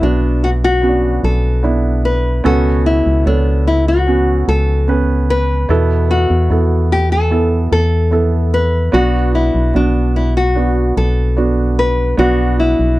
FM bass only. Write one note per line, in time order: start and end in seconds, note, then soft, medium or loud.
0.02 1.20 B1 medium
1.24 2.41 B1 medium
2.46 3.02 C#2 medium
3.06 3.25 C#2 medium
3.26 4.44 C#2 loud
4.48 5.66 C#2 medium
5.69 6.26 E2 medium
6.30 6.49 E2 medium
6.50 7.68 E2 medium
7.72 8.90 E2 medium
8.94 9.50 B1 loud
9.55 9.73 B1 medium
9.75 10.93 B1 medium
10.97 12.14 B1 medium
12.18 12.75 B1 medium
12.79 12.98 B1 medium